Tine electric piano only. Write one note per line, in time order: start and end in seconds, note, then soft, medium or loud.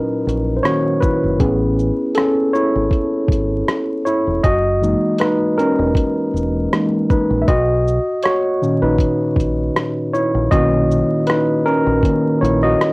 0.00 1.36 A#2 soft
0.00 1.36 F#3 medium
0.00 0.65 C#4 medium
0.00 1.42 D#4 medium
0.00 0.65 F#4 medium
0.00 0.61 A#4 medium
0.00 1.00 B4 medium
0.00 1.42 D#5 medium
0.56 0.63 C5 medium
0.63 0.98 D#3 medium
0.63 0.99 A#3 soft
0.63 0.99 C#4 medium
0.63 1.00 F#4 medium
0.63 1.03 C#5 medium
1.00 2.12 E4 medium
1.00 2.19 B4 medium
1.40 2.50 B3 medium
1.40 2.16 C#4 medium
1.40 2.50 G#4 medium
2.15 2.52 C#4 medium
2.15 2.51 A4 medium
2.53 4.02 E4 medium
2.53 4.01 C#5 medium
4.05 4.42 E4 medium
4.05 4.45 C#5 medium
4.43 5.17 F#4 medium
4.43 5.22 D#5 loud
4.82 5.34 E3 medium
4.82 5.34 G#3 soft
4.82 5.34 A#3 soft
4.82 5.21 D#4 medium
5.20 5.56 D#4 medium
5.20 5.55 B4 medium
5.58 7.07 C#4 medium
5.58 7.06 A#4 medium
6.72 7.06 E3 medium
6.72 7.06 G#3 soft
6.72 7.07 A#3 soft
6.72 7.07 D#4 medium
7.10 7.40 D#4 medium
7.10 7.43 B4 medium
7.42 7.48 E5 medium
7.48 8.21 F#4 medium
7.48 8.26 D#5 loud
8.24 8.79 F#4 medium
8.24 8.79 C#5 medium
8.62 9.14 A#2 soft
8.62 9.14 D#3 medium
8.62 9.14 C#4 medium
8.82 10.10 D#4 medium
8.82 10.17 B4 medium
10.14 10.50 E4 medium
10.14 10.53 C#5 medium
10.51 11.04 D#3 medium
10.51 11.04 A#3 medium
10.51 11.04 C#4 medium
10.51 11.24 F#4 medium
10.51 11.30 D#5 loud
11.27 11.63 D#4 medium
11.27 11.66 B4 medium
11.66 12.03 C#4 medium
11.66 12.44 A#4 medium
12.04 12.38 D#3 soft
12.04 12.38 A#3 soft
12.04 12.38 C#4 medium
12.41 12.62 E4 medium
12.41 12.63 C#5 medium
12.63 12.93 F#4 medium
12.63 12.93 D#5 loud